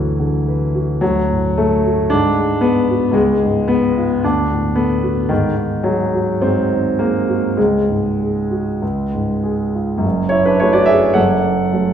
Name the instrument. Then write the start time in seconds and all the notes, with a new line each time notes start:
grand piano
Already playing: D2 D3 E3 F#3 F#4 B4
0.19 D3
0.48 B4
0.75 F#4
1.01 D2 F#3
1.31 A2
1.57 A3 A4
1.86 F#4
2.10 G#2 D4
2.38 G#3
2.61 B3 B4
2.90 F#4
3.11 C#2 G#3
3.44 G#2
3.68 B3 B4
3.98 F4
4.24 D2 D4
4.52 A2
4.75 B3 A4
5.03 F#4
5.29 G#2 D#3
5.57 D#3
5.83 F#3 G#4
6.15 F#4
6.42 G#2 C4
6.72 D#3
6.99 A#3 G#4
7.29 F#4
7.57 C#2 G#3
7.90 G#2
8.19 G#4
8.51 F#4
8.82 C#2
9.14 G#2
9.44 G#4
9.75 F4
9.98 F#2
10.04 F#1
10.29 E4 C#5
10.45 D4 B4
10.60 F#3 A3 C#4 E4 C#5
10.73 F#4 D5
10.86 G#4 E5
11.14 F#1 F#2 A4 F#5
11.73 F#3 A3 C#4